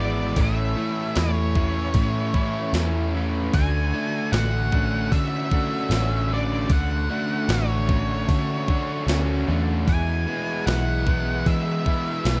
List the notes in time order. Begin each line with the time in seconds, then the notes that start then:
Already playing: G#1 E3 G#3 B3 E4
0.00 G#3 B3 E4 D5
0.36 A1 A2 E3 A3 C#4 E4, kick, open hi-hat
0.42 E5
0.76 A2 E3 A3 C#4 E4
1.16 E2 A2 E3 A3 C#4 E4 C#5, snare, open hi-hat
1.55 A2 E3 A3 C#4 E4, kick
1.94 A2 E3 A3 C#4 E4, kick, open hi-hat
2.34 A2 E3 A3 C#4 E4, kick
2.73 E2 A2 E3 A3 C#4 E4, snare, open hi-hat
3.14 A2 E3 A3 C#4 E4
3.54 D2 D3 A3 D4 F#4 G#5, kick, open hi-hat
3.94 D3 A3 D4 F#4
4.32 A1 D3 A3 D4 F#4 F#5, snare, open hi-hat
4.72 D3 A3 C#4 D4 F#4, kick
5.12 D3 A3 C#4 D4 F#4 E5, kick, open hi-hat
5.51 D3 A3 D4 F#4, kick
5.90 A1 D3 A3 C#4 D4, snare, open hi-hat
5.94 F#4
6.31 D3 A3 D4 F#4 D5
6.70 D2 D3 A3 D4 F#4 F#5, kick, open hi-hat
7.10 D3 A3 D4 F#4
7.49 A1 D3 A3 D4 F#4, snare, open hi-hat
7.53 C#5
7.89 D3 A3 C#4 D4 F#4, kick
8.29 D3 A3 C#4 D4 F#4, kick, open hi-hat
8.68 D3 A3 D4 F#4, kick
9.07 D2 D3 A3 C#4 D4 F#4, snare, open hi-hat
9.48 E2 D3 A3 D4 F#4
9.87 E2 E3 G#3 B3 E4 G#5, kick, open hi-hat
10.27 E3 G#3 B3 E4
10.67 B1 E3 G#3 B3 E4 F#5, snare, open hi-hat
11.07 E3 G#3 B3 E4, kick
11.46 E3 G#3 B3 E4 E5, kick, open hi-hat
11.86 E3 G#3 B3 E4, kick
12.25 B1 E3 G#3 B3 E4, snare, open hi-hat